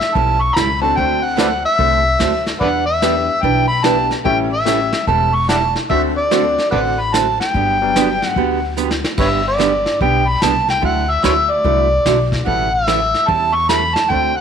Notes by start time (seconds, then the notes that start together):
Already playing: E5
0.01 snare
0.15 B1 E3 G3 C#4 E4 A4 A5, brush sweep, kick
0.41 C#6
0.53 E3 G3 A#5 B5, snare, hi-hat pedal
0.57 C#2 C#4 E4 A4
0.81 C4 D4 F#4 A4 A5
0.97 D2 D3 A3 C4 F#4 A4 G5, brush sweep, kick
1.24 F#5
1.37 D3 A3 C4 F#4 A4 B4 D5 F#5, snare, hi-hat pedal
1.65 E5
1.78 C2 D3 A3 C4 F#4 A4, brush sweep, kick
2.19 D2 D3 A3 C4 F#4 A4, snare, hi-hat pedal
2.46 snare
2.60 E2 E3 G3 D4 E4 B4 D5 F#5, brush sweep, kick
2.86 E5
3.02 E3 G3 B3 D4 E4 G4 B4, snare, hi-hat pedal
3.43 B1 E3 G3 D4 E4 B4 G5, brush sweep, kick
3.67 B5
3.84 E3 G3 B3 D4 E4 G4 B4 A5, snare, hi-hat pedal
4.11 snare
4.25 A1 E3 G3 A3 C#4 E4 G4 A4 G5, brush sweep, kick
4.53 E5
4.65 E3 G3 A3 C#4 E4 G4 A4, snare, hi-hat pedal
4.92 snare
5.07 E1 E3 G3 C#4 E4 A4 A5, brush sweep, kick
5.34 C#6
5.49 E3 G3 C#4 E4 A4 D5 F#5 A5, snare, hi-hat pedal
5.75 snare
5.89 D2 D3 A3 C4 D4 F#4 A4 E5, brush sweep, kick
6.17 D5
6.31 D3 A3 C4 D4 F#4 A4, snare, hi-hat pedal
6.58 snare
6.71 A1 D3 A3 C4 F#4 A4 B4 D5 F#5, brush sweep, kick
7.00 B5
7.13 D3 A3 C4 F#4 A4 A5, snare, hi-hat pedal
7.40 G5, snare
7.54 G1 D3 F#3 B3 D4 G4, brush sweep, kick
7.82 F#3 G3 B3 D4
7.96 D3 F#3 B3 D4 G4, snare, hi-hat pedal
8.22 snare
8.27 F#5
8.36 D2 D3 F#3 B3 D4 G4, brush sweep, kick
8.77 D3 F#3 B3 D4 G4, hi-hat pedal
8.91 snare
9.04 snare
9.17 G1 D3 G3 B3 D4 G4 B4 C#5 E5, brush sweep, kick, crash
9.48 D5
9.58 D3 G3 B3 D4 G4, snare, hi-hat pedal
9.86 snare
10.01 B1 D3 G3 B3 D4 G4 G5, brush sweep, kick
10.28 B5
10.42 C2 D3 G3 B3 D4 G4 A5, snare, hi-hat pedal
10.68 G5, snare
10.81 D2 D3 F#3 A3 E4 F#4 F#5, brush sweep, kick
11.10 E5
11.23 D2 D3 F#3 A3 E4 F#4 B4 C#5 E5, snare, hi-hat pedal
11.51 D5
11.64 C2 D3 F#3 A3 E4 F#4, brush sweep, kick
12.05 B1 D3 F#3 A3 E4 F#4, snare, hi-hat pedal
12.32 kick, snare
12.45 A1 E3 G3 C#4 E4 A4 F#5, brush sweep, kick
12.74 E5
12.87 E3 G3 C#4 E4 A4, snare, hi-hat pedal
13.14 snare
13.27 E2 E3 G3 C#4 E4 A4 A5, brush sweep, kick
13.55 C#6
13.69 E3 G3 C#4 E4 A4 B5, snare, hi-hat pedal
13.94 A5, snare
14.10 D2 D3 A3 C4 F#4 A4 G5, brush sweep, kick
14.36 F#5